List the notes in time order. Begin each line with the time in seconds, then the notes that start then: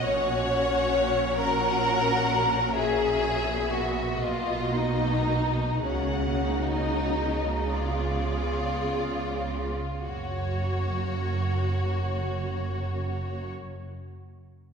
0.03 A#1 A#2 C#4 F#4 C#5 F#5
1.38 C#4 F#4 A#4 F#5
2.75 C#4 F#4 G#4 E5
3.48 B3
3.73 F#4
4.22 B1 B2 A#3 F4 F#4 D#5
4.75 D#4
5.84 C#2 C#3 A#3 C#4 F#4 F#5
6.43 D#4
6.75 D#5
7.73 B3 F4 G#4 D5
10.05 F#1 F#2 A#3 F#4 C#5